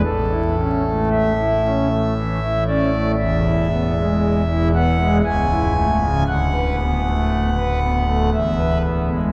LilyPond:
<<
  \new Staff \with { instrumentName = "Pipe organ" } { \time 3/4 \key a \major \tempo 4 = 58 a'4 e''4. d''8 | e''4. fis''8 gis''4 | fis''2 e''8 r8 | }
  \new Staff \with { instrumentName = "Pipe organ" } { \time 3/4 \key a \major << { a,16 e'16 cis'16 a8 e'16 cis'16 a16 e16 e'16 cis'16 a16 | e,16 e'16 b16 gis8 e'16 b16 gis16 cis,16 e'16 a16 cis16 | d,16 b'16 b16 a8 b'16 b16 a16 e,16 b'16 b16 gis16 | } \\ { a,,2. | e,,2 cis,,4 | d,,2 e,,4 | } >> }
>>